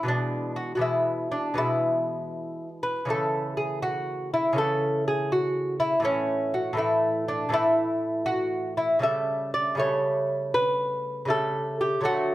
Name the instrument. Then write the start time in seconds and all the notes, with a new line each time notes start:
lute
0.03 B2 E3 G#3
0.08 D4
0.56 F#4
0.75 B2 E3 F#4
0.80 G#3 E4
1.32 D4
1.54 B2 E3 G#3 E4
2.83 B4
3.05 C#3 E3 A3
3.10 A4
3.57 G#4
3.82 F#4
4.34 E4
4.53 C#3 E3 A3
4.58 A4
5.08 G#4
5.32 F#4
5.80 E4
6.00 A2 E3 A3
6.05 C#4
6.54 F#4
6.73 A2 E3 A3
6.78 E4
7.28 D4
7.49 A2 E3 A3
7.53 E4
8.26 F#4
8.77 E4
8.99 C#3 G3 A3
9.03 E5
9.54 D5
9.75 C#3 G3 A3
9.79 C#5
10.54 B4
11.25 C#3 G3 A3
11.30 A4
11.81 G4
12.01 D3 F#3 A3
12.05 F#4